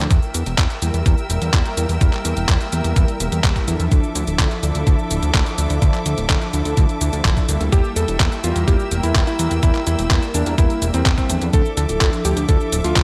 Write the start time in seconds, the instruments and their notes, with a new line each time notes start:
0.11 analog synth bass E2, string section A#4 E5 G5 E6, kick, closed hi-hat, cabasa
0.23 cabasa
0.34 analog synth bass E2, closed hi-hat, cabasa
0.46 analog synth bass E1, closed hi-hat, cabasa
0.58 analog synth bass E2, kick, clap, closed hi-hat, cabasa
0.70 closed hi-hat, cabasa
0.82 analog synth bass E2, analog polysynth G3 A#3 E4 A#4, closed hi-hat, cabasa
0.94 analog synth bass E2, closed hi-hat, cabasa
1.06 analog synth bass E2, kick, closed hi-hat, cabasa
1.18 cabasa
1.30 analog synth bass E1, analog polysynth G3 A#3 E4 A#4, closed hi-hat, cabasa
1.42 analog synth bass E2, closed hi-hat, cabasa
1.53 analog synth bass E2, kick, clap, closed hi-hat, cabasa
1.66 closed hi-hat, cabasa
1.77 analog synth bass E2, analog polysynth G3 A#3 E4 A#4, closed hi-hat, cabasa
1.89 analog synth bass E2, closed hi-hat, cabasa
2.01 analog synth bass E2, kick, closed hi-hat, cabasa
2.13 clap, cabasa
2.25 analog synth bass E2, closed hi-hat, cabasa
2.37 analog synth bass E1, closed hi-hat, cabasa
2.49 analog synth bass E2, kick, clap, closed hi-hat, cabasa
2.61 closed hi-hat, cabasa
2.72 analog synth bass E2, analog polysynth G3 A#3 E4 A#4, closed hi-hat, cabasa
2.84 analog synth bass E2, closed hi-hat, cabasa
2.96 analog synth bass E2, kick, closed hi-hat, cabasa
3.08 closed hi-hat, cabasa
3.20 analog synth bass E1, analog polysynth G3 A#3 E4 A#4, closed hi-hat, cabasa
3.32 analog synth bass E2, closed hi-hat, cabasa
3.44 analog synth bass E2, kick, clap, closed hi-hat, cabasa
3.56 kick, closed hi-hat, cabasa
3.68 analog synth bass E2, analog polysynth F3 D4 E4 A4, closed hi-hat, cabasa
3.80 analog synth bass E2, closed hi-hat, cabasa
3.92 analog synth bass D2, string section A4 D6, kick, closed hi-hat, cabasa
4.04 cabasa
4.15 analog synth bass D2, closed hi-hat, cabasa
4.27 analog synth bass D1, closed hi-hat, cabasa
4.39 analog synth bass D2, kick, clap, closed hi-hat, cabasa
4.51 closed hi-hat, cabasa
4.63 analog synth bass D2, analog polysynth F3 D4 E4 A4, closed hi-hat, cabasa
4.75 analog synth bass D2, closed hi-hat, cabasa
4.87 analog synth bass D2, kick, closed hi-hat, cabasa
4.99 cabasa
5.11 analog synth bass D1, analog polysynth F3 D4 E4 A4, closed hi-hat, cabasa
5.22 analog synth bass D2, closed hi-hat, cabasa
5.34 analog synth bass D2, kick, clap, closed hi-hat, cabasa
5.46 closed hi-hat, cabasa
5.58 analog synth bass D2, analog polysynth F3 D4 E4 A4, closed hi-hat, cabasa
5.70 analog synth bass D2, closed hi-hat, cabasa
5.82 analog synth bass D2, kick, closed hi-hat, cabasa
5.94 clap, cabasa
6.06 analog synth bass D2, closed hi-hat, cabasa
6.18 analog synth bass D1, closed hi-hat, cabasa
6.30 analog synth bass D2, kick, clap, closed hi-hat, cabasa
6.42 closed hi-hat, cabasa
6.53 analog synth bass D2, analog polysynth F3 D4 E4 A4, closed hi-hat, cabasa
6.65 analog synth bass D2, closed hi-hat, cabasa
6.77 analog synth bass D2, kick, closed hi-hat, cabasa
6.89 closed hi-hat, cabasa
7.01 analog synth bass D2, analog polysynth F3 D4 E4 A4, closed hi-hat, cabasa
7.13 analog synth bass D2, closed hi-hat, cabasa
7.25 analog synth bass D1, kick, clap, closed hi-hat, cabasa
7.37 kick, closed hi-hat, cabasa
7.49 analog synth bass D2, analog polysynth G3 A#3 E4 A4, closed hi-hat, cabasa
7.60 analog synth bass D2, closed hi-hat, cabasa
7.72 analog synth bass E2, string section A#3 G5 E6, electric grand piano G4, kick, closed hi-hat, cabasa
7.84 cabasa
7.96 analog synth bass E2, electric grand piano A4, closed hi-hat, cabasa
8.08 analog synth bass E1, closed hi-hat, cabasa
8.20 analog synth bass E2, kick, clap, closed hi-hat, cabasa
8.32 closed hi-hat, cabasa
8.44 analog synth bass E2, analog polysynth G3 A#3 E4 A#4, electric grand piano F4, closed hi-hat, cabasa
8.56 analog synth bass E2, closed hi-hat, cabasa
8.68 analog synth bass E2, electric grand piano G4, kick, closed hi-hat, cabasa
8.80 cabasa
8.91 analog synth bass E1, analog polysynth G3 A#3 E4 A#4, closed hi-hat, cabasa
9.03 analog synth bass E2, electric grand piano E4, closed hi-hat, cabasa
9.15 analog synth bass E2, kick, clap, closed hi-hat, cabasa
9.27 electric grand piano E4, closed hi-hat, cabasa
9.39 analog synth bass E2, analog polysynth G3 A#3 E4 A#4, closed hi-hat, cabasa
9.51 analog synth bass E2, closed hi-hat, cabasa
9.63 analog synth bass E2, electric grand piano E4, kick, closed hi-hat, cabasa
9.75 clap, cabasa
9.87 analog synth bass E2, electric grand piano E4, closed hi-hat, cabasa
9.99 analog synth bass E1, closed hi-hat, cabasa
10.10 analog synth bass E2, kick, clap, closed hi-hat, cabasa
10.23 closed hi-hat, cabasa
10.34 analog synth bass E2, analog polysynth G3 A#3 E4 A#4, electric grand piano D4, closed hi-hat, cabasa
10.46 analog synth bass E2, closed hi-hat, cabasa
10.58 analog synth bass E2, electric grand piano E4, kick, closed hi-hat, cabasa
10.70 closed hi-hat, cabasa
10.82 analog synth bass E1, analog polysynth G3 A#3 E4 A#4, closed hi-hat, cabasa
10.94 analog synth bass E2, electric grand piano C4, closed hi-hat, cabasa
11.06 analog synth bass E2, kick, clap, closed hi-hat, cabasa
11.18 electric grand piano C4, kick, closed hi-hat, cabasa
11.30 analog synth bass E2, analog polysynth F3 D4 E4 A4, closed hi-hat, cabasa
11.41 analog synth bass E2, closed hi-hat, cabasa
11.53 analog synth bass D2, string section A4 E5 D6, electric grand piano A4, kick, closed hi-hat, cabasa
11.65 cabasa
11.77 analog synth bass D2, electric grand piano A4, closed hi-hat, cabasa
11.89 analog synth bass D1, closed hi-hat, cabasa
12.01 analog synth bass D2, kick, clap, closed hi-hat, cabasa
12.13 closed hi-hat, cabasa
12.25 analog synth bass D2, analog polysynth F3 D4 E4 A4, electric grand piano G4, closed hi-hat, cabasa
12.37 analog synth bass D2, closed hi-hat, cabasa
12.49 analog synth bass D2, electric grand piano A4, kick, closed hi-hat, cabasa
12.61 cabasa
12.72 analog synth bass D1, analog polysynth F3 D4 E4 A4, closed hi-hat, cabasa
12.84 analog synth bass D2, electric grand piano F4, closed hi-hat, cabasa
12.96 analog synth bass D2, kick, clap, closed hi-hat, cabasa